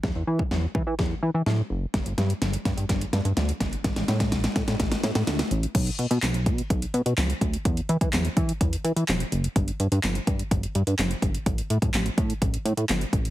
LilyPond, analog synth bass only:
\new Staff \with { instrumentName = "Analog synth bass" } { \clef bass \time 4/4 \key g \lydian \tempo 4 = 126 e,16 e,16 e8 e,8 e16 e16 e,8 e16 e16 a,8 fis,,8 | g,,16 g,,16 g,8 g,,8 g,16 g,16 g,,8 g,16 g,16 d,8 g,,8 | a,,16 a,,16 a,8 a,,8 a,16 a,16 a,,8 a,16 a,16 d,8 a,,8 | b,,8 b,16 b,16 b,,8 b,8 b,,8 b,16 b,16 cis,8 d,8 |
e,8 e16 e16 e,8 e8 e,8 e16 e16 e,,8 fis,,8 | g,,8 g,16 g,16 g,,8 g,8 g,,8 g,16 g,16 fis,,8 g,,8 | a,,8 a,16 a,16 a,,8 a,8 a,,8 a,16 a,16 g,,8 a,,8 | }